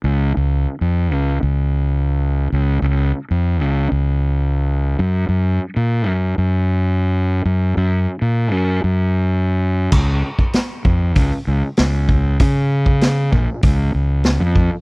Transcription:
<<
  \new Staff \with { instrumentName = "Fingered electric bass" } { \clef bass \time 4/4 \key des \mixolydian \tempo 4 = 97 des,8 des,8 r16 f,8 des,8 des,4.~ des,16 | des,8 des,8 r16 f,8 des,8 des,4.~ des,16 | ges,8 ges,8 r16 bes,8 ges,8 ges,4.~ ges,16 | ges,8 ges,8 r16 bes,8 ges,8 ges,4.~ ges,16 |
des,8 r4 f,8 des,16 r16 des,16 r16 des,4 | des4. bes,,16 r16 des,8 des,8. f,8 r16 | }
  \new DrumStaff \with { instrumentName = "Drums" } \drummode { \time 4/4 r4 r4 r4 r4 | r4 r4 r4 r4 | r4 r4 r4 r4 | r4 r4 r4 r4 |
<cymc bd>8. bd16 <hho sn>8 bd8 <hho bd>4 <hho sn>8 bd8 | <hho bd>8. bd16 <hho sn>8 bd8 <hho bd>4 <hho sn>8 bd8 | }
>>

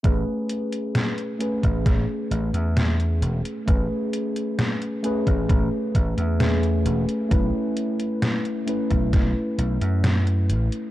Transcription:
<<
  \new Staff \with { instrumentName = "Tine electric piano" } { \time 4/4 \key a \major \tempo 4 = 66 <a cis' gis' b'>4. <a cis' gis' b'>2~ <a cis' gis' b'>8 | <a cis' gis' b'>4. <a cis' gis' b'>4. <a cis' gis' b'>4 | <a cis' e' b'>4. <a cis' e' b'>2~ <a cis' e' b'>8 | }
  \new Staff \with { instrumentName = "Slap bass" } { \clef bass \time 4/4 \key a \major a,,16 r4. a,,16 a,,16 r16 a,,16 e,8. e,,16 r16 | a,,16 r4. a,,16 a,,16 r16 a,,16 e,8. e,,16 r16 | b,,16 r4. b,,16 b,,16 r16 b,,16 fis,8. a,,16 r16 | }
  \new DrumStaff \with { instrumentName = "Drums" } \drummode { \time 4/4 <hh bd>8 hh16 hh16 <hh sn>16 hh16 hh16 <hh bd>16 <hh bd sn>8 hh16 hh16 <hh sn>16 hh16 hh16 hh16 | <hh bd>8 hh16 hh16 <hh sn>16 hh16 hh16 <hh bd>16 <hh bd>8 <hh bd>16 hh16 <hh sn>16 hh16 hh16 hh16 | <hh bd>8 hh16 hh16 <hh sn>16 hh16 hh16 <hh bd>16 <hh bd sn>8 hh16 hh16 <hh sn>16 hh16 hh16 hh16 | }
>>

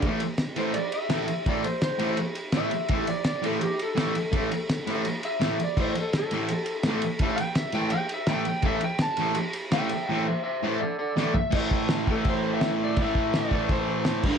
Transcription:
<<
  \new Staff \with { instrumentName = "Electric slide guitar" } { \time 4/4 \key a \minor \tempo 4 = 167 r4. c''8 d''8 e''4. | d''8 c''8 c''4 r4 e''4~ | e''8 d''8 d''8 a'8 g'8 a'4.~ | a'4. r4 e''4 d''8 |
c''8 a'8 a'2. | r8 g''8 e''8 g''8 g''8 e''8 g''8 g''8 | e''8 g''8 a''4 r4 <e'' g''>8 <e'' g''>8 | <e'' g''>8 <c'' e''>8 <c'' e''>8 <c'' e''>8 <a' d''>8 <a' d''>8 <a' d''>8 e''8 |
r4. a'8 c''8. e''8. d''8 | e''4 d''4 c''4. r8 | }
  \new Staff \with { instrumentName = "Distorted electric guitar" } { \clef bass \time 4/4 \key a \minor <a, e a>8 r4 <a, e a>8 r4 <a, e a>8 r8 | <a, e a>8 r4 <a, e a>8 r4 <a, e a>8 r8 | <a, e a>8 r4 <a, e a>8 r4 <a, e a>8 r8 | <a, e a>8 r4 <a, e a>8 r4 <a, e a>8 r8 |
<a, e a>8 r4 <a, e a>8 r4 <a, e a>8 r8 | <a, e a>8 r4 <a, e a>8 r4 <a, e a>8 r8 | <a, e a>8 r4 <a, e a>8 r4 <a, e a>8 r8 | <a, e a>8 r4 <a, e a>8 r4 <a, e a>8 r8 |
<a, e a>4. <a, e a>2~ <a, e a>8 | <a, e a>4. <a, e a>2 <g, d g>8 | }
  \new DrumStaff \with { instrumentName = "Drums" } \drummode { \time 4/4 <bd cymr>8 cymr8 <cymr sn>8 cymr8 cymr8 cymr8 <cymr sn>8 cymr8 | <bd cymr>8 cymr8 <cymr sn>8 cymr8 cymr8 cymr8 <cymr sn>8 cymr8 | <bd cymr>8 cymr8 <cymr sn>8 cymr8 cymr8 cymr8 <cymr sn>8 cymr8 | <bd cymr>8 cymr8 <cymr sn>8 cymr8 cymr8 cymr8 <cymr sn>8 cymr8 |
<cymc bd>8 cymr8 <cymr sn>8 cymr8 cymr8 cymr8 <cymr sn>8 cymr8 | <bd cymr>8 cymr8 <cymr sn>8 cymr8 cymr8 cymr8 <cymr sn>8 cymr8 | <bd cymr>8 cymr8 <cymr sn>8 cymr8 cymr8 cymr8 <cymr sn>8 cymr8 | r4 r4 r4 sn8 tomfh8 |
<cymc bd>8 bd8 <cymc sn>8 bd8 <cymc bd>4 <cymc sn>4 | <cymc bd>8 bd8 <cymc sn>8 bd8 <cymc bd>4 <cymc sn>8 <cymc bd>8 | }
>>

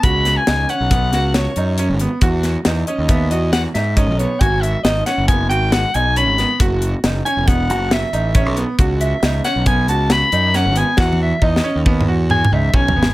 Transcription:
<<
  \new Staff \with { instrumentName = "Soprano saxophone" } { \time 5/4 \key cis \minor \tempo 4 = 137 b''8. gis''8. fis''4. cis''4 r4 | r4. dis''8 e''8 dis''8 fis''8 e''8 dis''8 cis''8 | gis''8 e''8 dis''8 fis''8 gis''8 g''8 fis''8 gis''8 b''4 | r4. gis''8 fis''4 e''4 e''8 r8 |
r8 e''4 fis''8 gis''8 a''8 b''4 fis''8 gis''8 | fis''8 e''8 dis''4 r4 gis''8 e''8 gis''4 | }
  \new Staff \with { instrumentName = "Grand piano" } { \time 5/4 \key cis \minor fis'4 dis'8 cis'8 b8 fis'4 dis'8 cis'8 b8 | fis'4 dis'8 cis'8 b8 fis'4 dis'8 cis'8 b8 | fis'4 dis'8 cis'8 b8 fis'4 dis'8 cis'8 b8 | fis'4 dis'8 cis'8 b8 fis'4 dis'8 cis'8 b8 |
fis'4 dis'8 cis'8 b8 fis'4 dis'8 cis'8 b8 | fis'4 dis'8 cis'8 b8 fis'4 dis'8 cis'8 b8 | }
  \new Staff \with { instrumentName = "Fingered electric bass" } { \clef bass \time 5/4 \key cis \minor cis,4 cis,8 r16 b,,8. cis,4 fis,8. gis,,8 r16 | e,4 e,8 r16 dis,8. e,4 gis,8. b,,8 r16 | gis,,4 gis,,8 r16 fis,,8. gis,,4 b,,8. gis,,8 r16 | fis,,4 fis,,8 r16 e,,8. fis,,4 a,,8. b,,8 r16 |
cis,4 cis,8 r16 b,,8. cis,4 fis,8. gis,,8 r16 | e,4 e,8 r16 dis,8. e,4 cis,8 b,,8 gis,,8 | }
  \new DrumStaff \with { instrumentName = "Drums" } \drummode { \time 5/4 <hh bd>8 <hh sn>8 <hh sn>8 hh8 <hh bd>8 <hh sn>8 <hh sn>8 hh8 hh8 hh8 | <hh bd>8 <hh sn>8 <hh sn>8 hh8 <hh bd>8 hh8 <hh sn>8 <hh sn>8 <hh bd>8 hh8 | <hh bd>8 hh8 <hh sn>8 <hh sn>8 <hh bd>8 hh8 <hh sn>8 hh8 hh8 <hh sn>8 | <hh bd>8 hh8 <hh sn>8 hh8 <hh bd>8 hh8 <hh sn>8 hh8 <hh bd>8 hh8 |
<hh bd>8 hh8 <hh sn>8 <hh sn>8 <hh bd>8 hh8 <hh sn>8 hh8 <hh sn>8 hh8 | \tuplet 3/2 { <bd sn>8 tommh8 r8 bd8 sn8 r8 bd8 toml8 r8 toml8 toml8 r8 bd8 tomfh8 sn8 } | }
>>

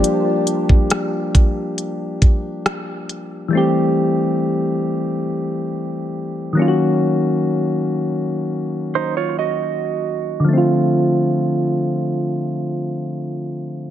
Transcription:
<<
  \new Staff \with { instrumentName = "Clean electric guitar" } { \time 4/4 \key d \minor \tempo 4 = 69 r1 | r1 | r2 r16 <ees' c''>16 <f' des''>16 <ges' ees''>4~ <ges' ees''>16 | r1 | }
  \new Staff \with { instrumentName = "Synth keys" } { \time 4/4 \key d \minor <f g bes d' g'>2.~ <f g bes d' g'>8 r8 | <e g a c' g'>2.~ <e g a c' g'>8 <ees ges bes des' f' ges'>8~ | <ees ges bes des' f' ges'>2.~ <ees ges bes des' f' ges'>8 r8 | <d f a c' f'>1 | }
  \new DrumStaff \with { instrumentName = "Drums" } \drummode { \time 4/4 hh8 hh16 bd16 <hh ss>8 <hh bd>8 hh8 <hh bd>8 <hh ss>8 hh8 | r4 r4 r4 r4 | r4 r4 r4 r4 | r4 r4 r4 r4 | }
>>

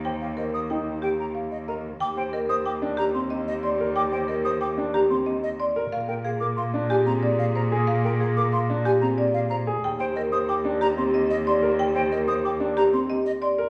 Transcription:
<<
  \new Staff \with { instrumentName = "Flute" } { \time 6/4 \key ees \lydian \tempo 4 = 184 r8 f''8 ees''8 ees'''8 r4 g''8 bes''8 r8 ees''8 bes''8 r8 | \key ees \major d'''8 g''8 ees''8 ees'''8 d'''8 r8 bes''8 c'''8 r8 ees''8 c'''8 r8 | d'''8 g''8 ees''8 ees'''8 d'''8 r8 bes''8 c'''8 r8 ees''8 c'''8 r8 | r8 g''8 f''8 d'''8 c'''8 r8 aes''8 bes''8 r8 f''8 bes''8 r8 |
r8 g''8 f''8 d'''8 c'''8 r8 aes''8 bes''8 r8 f''8 bes''8 r8 | r8 g''8 ees''8 ees'''8 d'''8 r8 bes''8 c'''8 r8 ees''8 c'''8 r8 | r8 g''8 ees''8 ees'''8 d'''8 r8 bes''8 c'''8 r8 ees''8 c'''8 r8 | }
  \new Staff \with { instrumentName = "Marimba" } { \time 6/4 \key ees \lydian g''8 r8 bes'8 r8 g''8 r8 g'8 r8 f''8 r8 ees''8 r8 | \key ees \major g''8 r8 bes'8 r8 g''8 r8 g'8 r8 ees''8 r8 d''8 r8 | g''8 r8 bes'8 r8 g''8 r8 g'8 r8 ees''8 r8 d''8 r8 | f''8 r8 aes'8 r8 f''8 r8 g'8 r8 d''8 r8 c''8 r8 |
f''8 r8 aes'8 r8 f''8 r8 g'8 r8 d''8 r8 c''8 r8 | g''8 r8 bes'8 r8 g''8 r8 g'8 r8 ees''8 r8 d''8 r8 | g''8 r8 bes'8 r8 g''8 r8 g'8 r8 ees''8 r8 d''8 r8 | }
  \new Staff \with { instrumentName = "Grand piano" } { \time 6/4 \key ees \lydian c''8 r8 c''8 r8 ees'8 r2 r8 bes'8 r8 | \key ees \major r8 c''8 r8 c''8 r8 d'8 r8 c'8 r4. bes'8 | r8 c''8 r8 c''8 r8 d'8 r8 c'8 r4. bes'8 | r8 bes'8 r8 bes'8 r8 d'8 r8 c'8 r4. aes'8 |
r8 bes'8 r8 bes'8 r8 d'8 r8 c'8 r4. aes'8 | r8 c''8 r8 c''8 r8 d'8 r8 c'8 r4. bes'8 | r8 c''8 r8 c''8 r8 d'8 r8 c'8 r4. bes'8 | }
  \new Staff \with { instrumentName = "Clarinet" } { \time 6/4 \key ees \lydian r1. | \key ees \major g'1.~ | g'1~ g'4. r8 | aes'1.~ |
aes'1~ aes'4. r8 | g'1.~ | g'1~ g'4. r8 | }
  \new Staff \with { instrumentName = "Cello" } { \clef bass \time 6/4 \key ees \lydian ees,1. | \key ees \major ees,1.~ | ees,1. | bes,1.~ |
bes,1. | ees,1.~ | ees,1. | }
>>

